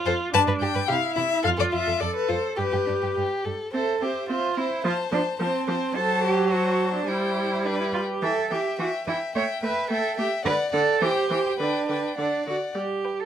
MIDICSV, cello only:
0, 0, Header, 1, 2, 480
1, 0, Start_track
1, 0, Tempo, 556070
1, 289, Time_signature, 2, 2, 24, 8
1, 1731, Tempo, 575816
1, 3171, Tempo, 556070
1, 5571, Tempo, 571973
1, 7491, Tempo, 554529
1, 9411, Tempo, 576923
1, 11270, End_track
2, 0, Start_track
2, 0, Title_t, "Cello"
2, 0, Program_c, 0, 42
2, 47, Note_on_c, 0, 41, 51
2, 96, Note_off_c, 0, 41, 0
2, 293, Note_on_c, 0, 43, 73
2, 340, Note_off_c, 0, 43, 0
2, 407, Note_on_c, 0, 43, 49
2, 455, Note_off_c, 0, 43, 0
2, 523, Note_on_c, 0, 43, 45
2, 571, Note_off_c, 0, 43, 0
2, 647, Note_on_c, 0, 43, 49
2, 694, Note_off_c, 0, 43, 0
2, 766, Note_on_c, 0, 48, 62
2, 814, Note_off_c, 0, 48, 0
2, 1010, Note_on_c, 0, 48, 45
2, 1057, Note_off_c, 0, 48, 0
2, 1250, Note_on_c, 0, 41, 64
2, 1298, Note_off_c, 0, 41, 0
2, 1367, Note_on_c, 0, 41, 41
2, 1416, Note_off_c, 0, 41, 0
2, 1492, Note_on_c, 0, 41, 42
2, 1540, Note_off_c, 0, 41, 0
2, 1613, Note_on_c, 0, 41, 37
2, 1661, Note_off_c, 0, 41, 0
2, 1732, Note_on_c, 0, 41, 55
2, 1779, Note_off_c, 0, 41, 0
2, 1972, Note_on_c, 0, 41, 38
2, 2019, Note_off_c, 0, 41, 0
2, 2215, Note_on_c, 0, 43, 46
2, 2263, Note_off_c, 0, 43, 0
2, 2334, Note_on_c, 0, 43, 32
2, 2382, Note_off_c, 0, 43, 0
2, 2466, Note_on_c, 0, 43, 30
2, 2512, Note_off_c, 0, 43, 0
2, 2582, Note_on_c, 0, 43, 33
2, 2628, Note_off_c, 0, 43, 0
2, 2703, Note_on_c, 0, 43, 45
2, 2749, Note_off_c, 0, 43, 0
2, 2943, Note_on_c, 0, 43, 31
2, 2989, Note_off_c, 0, 43, 0
2, 3181, Note_on_c, 0, 69, 56
2, 3420, Note_on_c, 0, 67, 47
2, 3433, Note_off_c, 0, 69, 0
2, 3652, Note_off_c, 0, 67, 0
2, 3657, Note_on_c, 0, 65, 57
2, 3894, Note_on_c, 0, 64, 53
2, 3906, Note_off_c, 0, 65, 0
2, 4129, Note_off_c, 0, 64, 0
2, 4134, Note_on_c, 0, 65, 55
2, 4203, Note_off_c, 0, 65, 0
2, 4374, Note_on_c, 0, 62, 62
2, 4443, Note_off_c, 0, 62, 0
2, 4610, Note_on_c, 0, 60, 56
2, 5091, Note_on_c, 0, 69, 65
2, 5104, Note_off_c, 0, 60, 0
2, 5331, Note_off_c, 0, 69, 0
2, 5335, Note_on_c, 0, 67, 66
2, 5569, Note_on_c, 0, 66, 60
2, 5582, Note_off_c, 0, 67, 0
2, 5930, Note_off_c, 0, 66, 0
2, 5935, Note_on_c, 0, 62, 50
2, 6046, Note_on_c, 0, 64, 46
2, 6058, Note_off_c, 0, 62, 0
2, 6525, Note_on_c, 0, 62, 50
2, 6537, Note_off_c, 0, 64, 0
2, 6645, Note_off_c, 0, 62, 0
2, 6650, Note_on_c, 0, 64, 47
2, 6699, Note_off_c, 0, 64, 0
2, 6760, Note_on_c, 0, 65, 45
2, 6810, Note_off_c, 0, 65, 0
2, 6891, Note_on_c, 0, 67, 48
2, 7004, Note_on_c, 0, 69, 55
2, 7017, Note_off_c, 0, 67, 0
2, 7248, Note_on_c, 0, 67, 47
2, 7260, Note_off_c, 0, 69, 0
2, 7479, Note_off_c, 0, 67, 0
2, 7484, Note_on_c, 0, 66, 52
2, 7553, Note_off_c, 0, 66, 0
2, 7730, Note_on_c, 0, 64, 51
2, 7799, Note_off_c, 0, 64, 0
2, 7970, Note_on_c, 0, 73, 56
2, 8039, Note_off_c, 0, 73, 0
2, 8206, Note_on_c, 0, 71, 55
2, 8440, Note_off_c, 0, 71, 0
2, 8449, Note_on_c, 0, 69, 60
2, 8681, Note_off_c, 0, 69, 0
2, 8688, Note_on_c, 0, 67, 61
2, 8758, Note_off_c, 0, 67, 0
2, 8923, Note_on_c, 0, 71, 75
2, 8993, Note_off_c, 0, 71, 0
2, 9164, Note_on_c, 0, 69, 66
2, 9409, Note_on_c, 0, 67, 71
2, 9421, Note_off_c, 0, 69, 0
2, 9771, Note_off_c, 0, 67, 0
2, 9779, Note_on_c, 0, 67, 53
2, 9827, Note_off_c, 0, 67, 0
2, 9894, Note_on_c, 0, 62, 51
2, 10368, Note_off_c, 0, 62, 0
2, 10377, Note_on_c, 0, 62, 43
2, 10603, Note_off_c, 0, 62, 0
2, 10616, Note_on_c, 0, 66, 41
2, 10683, Note_off_c, 0, 66, 0
2, 10861, Note_on_c, 0, 67, 48
2, 11221, Note_on_c, 0, 69, 52
2, 11233, Note_off_c, 0, 67, 0
2, 11270, Note_off_c, 0, 69, 0
2, 11270, End_track
0, 0, End_of_file